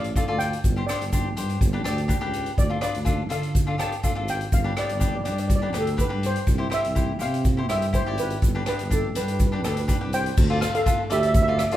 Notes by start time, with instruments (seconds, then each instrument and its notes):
Already playing: tuba A1, steel pan D5
0.04 closed hi-hat
0.16 cavaquinho F4 A4 D5, kick, closed hi-hat, shaker
0.28 tuba D2, cavaquinho F4 A4 D5
0.39 steel pan G5, closed hi-hat, shaker
0.53 closed hi-hat
0.64 tuba G1, kick, closed hi-hat, shaker
0.76 cavaquinho D4 G4 C5
0.87 cavaquinho D4 G4 C5, steel pan D5, cross-stick, closed hi-hat, shaker
1.02 tuba G1, closed hi-hat
1.13 cavaquinho D4 G4 C5, kick, closed hi-hat, shaker
1.37 tuba G2, cavaquinho D4 G4 C5, closed hi-hat, shaker
1.49 closed hi-hat
1.61 tuba G1, kick, closed hi-hat, shaker
1.73 cavaquinho D4 G4 B4
1.84 tuba D2, cavaquinho D4 G4 D5, cross-stick, closed hi-hat, shaker
1.98 closed hi-hat
2.08 cavaquinho D4 G4 B4, kick, closed hi-hat, shaker
2.21 tuba C#2, cavaquinho D4 G4 B4
2.34 closed hi-hat, shaker
2.46 closed hi-hat
2.58 tuba D2, steel pan D5, kick, closed hi-hat, shaker
2.70 cavaquinho D4 F4 A4
2.81 cavaquinho D4 F4 B4, steel pan D5, cross-stick, closed hi-hat, shaker
2.95 tuba D2, closed hi-hat
3.05 cavaquinho D4 F4 A4, kick, closed hi-hat, shaker
3.29 tuba D3, cavaquinho D4 F4 A4, steel pan F5, closed hi-hat, shaker
3.43 closed hi-hat
3.55 kick, closed hi-hat, shaker
3.67 cavaquinho D4 F4 A4
3.78 cavaquinho D4 F4 G4, steel pan A5, cross-stick, closed hi-hat, shaker
3.92 closed hi-hat
4.03 cavaquinho D4 F4 A4, kick, closed hi-hat, shaker
4.15 tuba G#1, cavaquinho D4 F4 A4
4.28 steel pan G5, closed hi-hat, shaker
4.41 closed hi-hat
4.52 tuba G1, steel pan F5, kick, closed hi-hat, shaker
4.64 cavaquinho D4 G4 B4
4.76 cavaquinho D4 G4 B4, steel pan D5, cross-stick, closed hi-hat
4.86 steel pan D5, closed hi-hat
4.91 tuba G1, steel pan D5
5.00 cavaquinho D4 G4 B4, steel pan D5, kick, closed hi-hat, shaker
5.08 steel pan D5
5.16 steel pan D5
5.24 tuba G2, cavaquinho D4 G4 B4, steel pan D5, closed hi-hat, shaker
5.32 steel pan D5
5.38 steel pan D5, closed hi-hat
5.48 steel pan D5, kick, closed hi-hat, shaker
5.55 steel pan D5
5.62 cavaquinho D4 G4 B4, steel pan D5
5.73 tuba D2, cavaquinho D4 G4 B4, cross-stick, closed hi-hat, shaker
5.79 steel pan A4
5.87 closed hi-hat
5.97 cavaquinho D4 G4 B4, kick, closed hi-hat, shaker
6.01 steel pan B4
6.09 tuba G2, cavaquinho D4 G4 B4
6.23 steel pan C5, closed hi-hat, shaker
6.36 closed hi-hat
6.47 tuba C2, kick, closed hi-hat, shaker
6.58 cavaquinho E4 G4 C5
6.70 cavaquinho E4 G4 C5, cross-stick, closed hi-hat, shaker
6.74 steel pan E5
6.85 tuba C2, closed hi-hat
6.95 cavaquinho E4 G4 C5, kick, closed hi-hat, shaker
7.19 tuba C3, cavaquinho E4 G4 C5, steel pan F5, closed hi-hat, shaker
7.34 closed hi-hat
7.45 kick, closed hi-hat, shaker
7.57 cavaquinho E4 G4 C5
7.69 tuba G2, cavaquinho E4 G4 C5, steel pan E5, cross-stick, closed hi-hat, shaker
7.82 closed hi-hat
7.93 cavaquinho E4 G4 C5, steel pan C5, kick, closed hi-hat, shaker
8.06 tuba G#1, cavaquinho E4 G4 D5
8.18 steel pan B4, closed hi-hat, shaker
8.30 closed hi-hat
8.42 tuba G1, kick, closed hi-hat, shaker
8.55 cavaquinho D4 G4 B4
8.66 cavaquinho D4 G4 B4, steel pan B4, cross-stick, closed hi-hat
8.79 tuba G1, closed hi-hat
8.90 cavaquinho D4 G4 D5, steel pan A4, kick, closed hi-hat, shaker
9.15 tuba G2, cavaquinho D4 G4 B4, steel pan B4, closed hi-hat, shaker
9.24 steel pan B4
9.28 closed hi-hat
9.32 steel pan B4
9.39 steel pan B4, kick, closed hi-hat, shaker
9.47 steel pan B4
9.52 cavaquinho D4 G4 B4, steel pan B4
9.63 tuba D2, cavaquinho D4 G4 A4, steel pan B4, cross-stick, closed hi-hat, shaker
9.70 steel pan B4
9.77 steel pan B4, closed hi-hat
9.88 cavaquinho D4 G4 B4, kick, closed hi-hat, shaker
10.01 tuba C2, cavaquinho D4 G4 B4
10.13 steel pan C5 G5, closed hi-hat, shaker
10.26 closed hi-hat
10.37 tuba D2, kick, crash, shaker
10.50 cavaquinho F4 A4 D5
10.60 cavaquinho F4 A4 F5, cross-stick, closed hi-hat, shaker
10.75 steel pan A4 F5, closed hi-hat, shaker
10.86 cavaquinho F4 A4 B4, kick, closed hi-hat, shaker
11.10 tuba D2, cavaquinho F4 A4 D5, steel pan G4 E5, closed hi-hat, shaker
11.20 steel pan E5, closed hi-hat
11.24 steel pan E5, shaker
11.34 steel pan E5, kick, closed hi-hat, shaker
11.42 steel pan E5
11.48 cavaquinho F4 A4 D5, steel pan E5
11.58 steel pan E5, cross-stick, closed hi-hat, shaker
11.71 cavaquinho F4 A4 D5, closed hi-hat